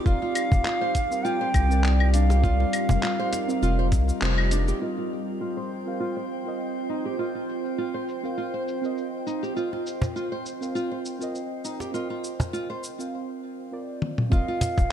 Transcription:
Already playing: synth texture D#4 D6, ambient pad F4 G4
0.04 analog synth bass F1, ambient pad G3 A#4, synth keys C4 F4 A#4, nylon-string guitar F4, bansuri F5, kick, cabasa
0.08 synth keys D5
0.22 nylon-string guitar F4, cajon slap
0.35 closed hi-hat, cabasa, claves
0.52 analog synth bass F1, cajon bass, kick, cabasa
0.65 nylon-string guitar F4, clap, cabasa
0.81 nylon-string guitar C5
0.95 kick, closed hi-hat, cabasa
1.10 synth keys C4 F4 A#4 F5, cabasa
1.24 nylon-string guitar F4, bansuri G5, cabasa
1.41 nylon-string guitar C5
1.54 analog synth bass C2, kick, closed hi-hat, cabasa, claves
1.69 synth keys C4 F4 A#4 D5, cabasa
1.84 clap, cabasa
2.00 claves
2.13 nylon-string guitar D4, bansuri F5, closed hi-hat, cabasa
2.30 nylon-string guitar G4, cajon slap, cabasa
2.41 synth keys C4 F4 A#4 D5, nylon-string guitar F4, kick, cabasa
2.60 nylon-string guitar F4, cajon slap
2.73 closed hi-hat, cabasa, claves
2.89 analog synth bass F1, cajon bass, cabasa
3.03 nylon-string guitar F4, clap, cabasa
3.19 nylon-string guitar C5
3.33 cajon slap, closed hi-hat, cabasa
3.48 synth keys C4 F4 A#4 F5, cabasa
3.62 analog synth bass F1, nylon-string guitar F4, cabasa
3.79 nylon-string guitar C5
3.92 analog synth bass C2, kick, closed hi-hat, cabasa
4.09 cabasa
4.21 analog synth bass F1, synth keys C4 F4 A#4 C5, clap, cabasa
4.38 claves
4.51 nylon-string guitar D4, closed hi-hat, cabasa
4.68 nylon-string guitar G4, cabasa
4.79 synth keys C4 F4 A#4, synth texture C4 C5, ambient pad F4 C5 G5, nylon-string guitar F4
4.83 synth keys D#5
4.98 nylon-string guitar F4
5.11 cabasa
5.28 cabasa
5.41 nylon-string guitar F4, cabasa
5.57 nylon-string guitar C5
5.71 cabasa
5.86 synth keys C4 F4 A#4 F5, cabasa
6.00 nylon-string guitar F4, cabasa
6.17 nylon-string guitar C5
6.30 cabasa
6.44 synth keys C4 F4 A#4, cabasa
6.48 synth keys D#5
6.60 cabasa
6.89 nylon-string guitar D#4, cabasa
7.05 nylon-string guitar G4, cabasa
7.17 synth keys C4 F4 A#4, nylon-string guitar F4, cabasa
7.21 synth keys D#5
7.35 nylon-string guitar F4
7.49 cabasa
7.65 cabasa
7.78 nylon-string guitar F4, cabasa
7.94 nylon-string guitar C5
8.08 cabasa
8.23 synth keys C4 F4 A#4 F5, cabasa
8.38 nylon-string guitar F4, cabasa
8.54 nylon-string guitar C5
8.68 cabasa
8.81 synth keys C4 F4 A#4 D#5, cabasa
8.98 cabasa
9.27 nylon-string guitar D#4, cabasa
9.43 nylon-string guitar G4, cabasa
9.54 synth keys C4 F4 A#4 D#5, nylon-string guitar F4, cabasa
9.73 nylon-string guitar F4, cajon slap
9.86 cabasa
10.02 cajon bass, cabasa
10.16 nylon-string guitar F4, cabasa
10.32 nylon-string guitar C5
10.46 cabasa
10.61 synth keys C4 F4 A#4 F5, cabasa
10.75 nylon-string guitar F4, cabasa
10.91 nylon-string guitar C5
11.05 cabasa
11.19 synth keys C4 F4 A#4, cabasa
11.23 synth keys D#5
11.35 cabasa
11.64 nylon-string guitar D#4, cabasa
11.80 nylon-string guitar G4, cajon slap, cabasa
11.92 synth keys C4 F4 A#4 D#5, nylon-string guitar F4, cabasa
12.10 nylon-string guitar F4
12.24 cabasa
12.40 cajon bass, cajon slap, cabasa
12.53 nylon-string guitar F4, cabasa
12.70 nylon-string guitar C5
12.84 cabasa
12.99 synth keys C4 F4 A#4 F5, cabasa
13.71 synth keys C4 F4 A#4 D5
14.02 high tom
14.18 mid tom
14.30 analog synth bass F1, ambient pad G#3 D#4, synth keys C4 F4 A#4 D#5, nylon-string guitar F4, bansuri F5, kick, cabasa
14.48 nylon-string guitar F4
14.61 cajon bass, closed hi-hat, cabasa
14.78 analog synth bass D#1, kick, cajon slap, cabasa

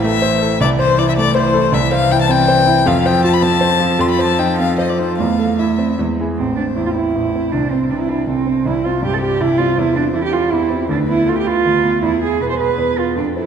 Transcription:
Already playing: grand piano A1 E4 C5, cello E3
0.03 grand piano A3, violin E5
0.22 grand piano C5
0.42 grand piano A4
0.61 grand piano C2, cello E3, violin D5
0.79 grand piano C5, violin C5
0.98 grand piano E4, violin D5
1.09 violin E5
1.17 grand piano A3, violin D5
1.35 cello E3, grand piano C5, violin C5
1.54 grand piano A4
1.72 grand piano C2, cello E3, violin E5
1.92 grand piano C5, violin F5
2.11 grand piano E4, violin G5
2.21 violin A5
2.29 grand piano C4, violin G5
2.48 grand piano C5
2.67 grand piano E4
2.86 grand piano F2, cello F3, violin F5
3.06 grand piano C5, violin G5
3.24 grand piano F4, violin A5
3.33 violin B5
3.42 grand piano C4, violin A5
3.61 grand piano C5
3.80 grand piano F4
3.99 grand piano F2, violin C6
4.10 violin B5
4.19 grand piano C5, violin A5
4.39 grand piano D#4, violin G5
4.59 grand piano C4, violin F5
4.78 grand piano C5, violin D#5
4.89 violin D5
4.99 grand piano D#4, violin C5
5.18 grand piano E2, cello A3, violin F5
5.39 grand piano A4
5.59 grand piano E4, violin E5
5.78 grand piano C4
5.99 grand piano E2, cello G#3
6.20 grand piano E4 G#4
6.38 grand piano A1, cello C4, violin C5
6.57 grand piano C4, cello D4
6.76 grand piano E2, cello E4
6.86 cello F4
6.94 cello E4, grand piano E4
7.15 grand piano A1, violin C5
7.35 grand piano C4
7.52 grand piano C2, cello D4
7.70 cello C4, grand piano C4
7.90 grand piano C3, cello D4, violin B4
8.00 cello E4
8.09 cello D4, grand piano E4
8.27 grand piano C2, cello C4, violin A4
8.47 grand piano C4
8.66 grand piano C2, cello E4, violin C5
8.85 grand piano C4, cello F4
9.02 grand piano G2, cello G4
9.14 cello A4
9.22 cello G4, grand piano G4
9.41 grand piano C2, cello E4, violin D5
9.58 grand piano C4, cello F4
9.77 grand piano E2, cello E4, violin C5
9.96 grand piano C4, cello D4
10.13 grand piano E3, cello E4, violin A4
10.24 cello G4
10.33 cello F4, grand piano G4
10.52 grand piano E2, cello E4, violin G4
10.70 grand piano C4
10.89 grand piano D2, cello D4, violin B4
11.08 grand piano B3, cello E4
11.26 grand piano D3, cello F4, violin B4
11.38 cello G4
11.46 cello F4, grand piano B4
11.66 grand piano D2
11.83 grand piano B3
12.02 grand piano E2, cello E4, violin G#4
12.20 grand piano B3, cello G#4
12.40 grand piano B2, violin G#4, cello B4
12.50 cello C5
12.59 grand piano G#4, cello B4
12.78 grand piano E2
12.96 grand piano B3, cello F4
13.16 grand piano F2, cello D4, violin A4
13.36 cello E4, grand piano A4 C5

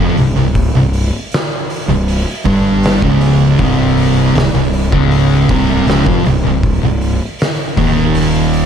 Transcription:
0.00 fingered electric bass F1, distorted electric guitar F2 F3
0.16 fingered electric bass C1, distorted electric guitar C2, open hi-hat
0.35 fingered electric bass C1, distorted electric guitar C2
0.55 kick, open hi-hat
0.74 fingered electric bass C1, distorted electric guitar C2
0.93 open hi-hat
1.32 snare, open hi-hat
1.70 open hi-hat
1.88 fingered electric bass C1, distorted electric guitar C2
2.08 open hi-hat
2.46 fingered electric bass G1, distorted electric guitar G2 G3, kick, open hi-hat
2.83 snare, open hi-hat
3.02 fingered electric bass C#1, distorted electric guitar C#2 C#3, kick
3.21 open hi-hat
3.58 fingered electric bass C1, distorted electric guitar C2 C3, kick, open hi-hat
3.97 open hi-hat
4.35 fingered electric bass C1, distorted electric guitar C2, snare, open hi-hat
4.54 fingered electric bass C1, distorted electric guitar C2
4.73 open hi-hat
4.92 fingered electric bass C#1, distorted electric guitar C#2 C#3, kick
5.11 open hi-hat
5.49 fingered electric bass C1, distorted electric guitar C2 C3, kick, open hi-hat
5.86 fingered electric bass C#1, distorted electric guitar C#2 C#3, snare, open hi-hat
6.06 fingered electric bass F1, distorted electric guitar F2 F3, kick
6.25 fingered electric bass C1, distorted electric guitar C2, open hi-hat
6.44 fingered electric bass C1, distorted electric guitar C2
6.63 kick, open hi-hat
6.83 fingered electric bass C1, distorted electric guitar C2
7.01 open hi-hat
7.39 snare, open hi-hat
7.77 fingered electric bass D#1, distorted electric guitar D#2 D#3, kick, open hi-hat
8.15 open hi-hat
8.53 open hi-hat

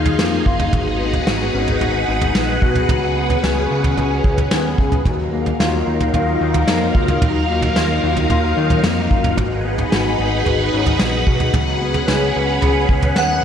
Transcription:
Already playing: analog synth bass D#2, string machine F#3 D#4 G#4 F5, clean electric guitar F#3 A#3 D#4 F4
0.06 floor tom
0.19 analog synth bass F2, clean electric guitar A#3, snare
0.46 analog synth bass F#1, clean electric guitar F4, kick
0.59 floor tom
0.72 analog synth bass G#1, clean electric guitar F#3, string machine B4 F#5, kick, floor tom
1.00 clean electric guitar B3
1.13 floor tom
1.27 analog synth bass G#1, clean electric guitar F#4, snare
1.54 analog synth bass G#1, clean electric guitar C#4
1.68 clean electric guitar D#4, floor tom
1.81 analog synth bass G#1, clean electric guitar F#4, floor tom
2.08 analog synth bass G#1, clean electric guitar D#4
2.21 floor tom
2.35 analog synth bass A#1, clean electric guitar B3, snare
2.62 analog synth bass B1, clean electric guitar F#4, kick
2.75 floor tom
2.89 analog synth bass C#2, clean electric guitar F#3, string machine C#4, floor tom
3.16 clean electric guitar B3
3.30 floor tom
3.43 analog synth bass C#2, clean electric guitar G#4, snare
3.70 analog synth bass C#2, clean electric guitar B3
3.83 clean electric guitar C#4, floor tom
3.97 analog synth bass C#2, clean electric guitar G#4, floor tom
4.24 analog synth bass C#2, clean electric guitar C#4, kick
4.38 floor tom
4.51 analog synth bass D#2, clean electric guitar B3, snare
4.78 analog synth bass C#2, clean electric guitar G#4, kick
4.92 floor tom
5.05 analog synth bass D#2, clean electric guitar F#3, string machine F#3 D#4 A#4 F5, kick, floor tom
5.32 clean electric guitar A#3
5.46 floor tom
5.60 analog synth bass D#2, clean electric guitar F4, snare
5.86 analog synth bass D#2, clean electric guitar D#4
6.00 floor tom
6.13 analog synth bass D#2, clean electric guitar F4, floor tom
6.40 analog synth bass D#2, clean electric guitar D#4
6.54 floor tom
6.67 analog synth bass F2, clean electric guitar A#3, snare
6.94 analog synth bass C#2, clean electric guitar F4, kick
7.08 floor tom
7.21 analog synth bass D#2, clean electric guitar F#3, floor tom
7.49 clean electric guitar A#3
7.62 floor tom
7.76 analog synth bass D#2, clean electric guitar F4, snare
8.03 analog synth bass D#2, clean electric guitar D#4
8.17 floor tom
8.29 analog synth bass D#2, clean electric guitar F4, floor tom
8.56 analog synth bass D#2, clean electric guitar D#4
8.70 floor tom
8.83 analog synth bass F2, clean electric guitar A#3, snare
9.11 analog synth bass F#1, clean electric guitar F4, kick
9.24 floor tom
9.37 analog synth bass G#1, clean electric guitar F#3, string machine D#4 G#4 B4 F#5, kick, floor tom
9.64 clean electric guitar B3
9.78 floor tom
9.92 analog synth bass G#1, clean electric guitar F#4, snare
10.18 analog synth bass G#1, clean electric guitar D#4
10.45 analog synth bass G#1, clean electric guitar F#4, floor tom
10.72 analog synth bass G#1, clean electric guitar C#4
10.86 clean electric guitar D#4, floor tom
10.99 analog synth bass A#1, clean electric guitar B3, snare
11.27 analog synth bass B1, clean electric guitar F#4, kick
11.40 floor tom
11.54 analog synth bass C#2, clean electric guitar F#3, string machine C#4 G#4 B4, floor tom
11.81 clean electric guitar B3
11.94 floor tom
12.08 analog synth bass C#2, clean electric guitar G#4, snare
12.35 analog synth bass C#2, clean electric guitar C#4
12.62 analog synth bass C#2, clean electric guitar G#4, floor tom
12.89 analog synth bass C#2, clean electric guitar C#4, kick
13.02 floor tom
13.16 analog synth bass D#2, clean electric guitar B3, synth bell F#5, snare

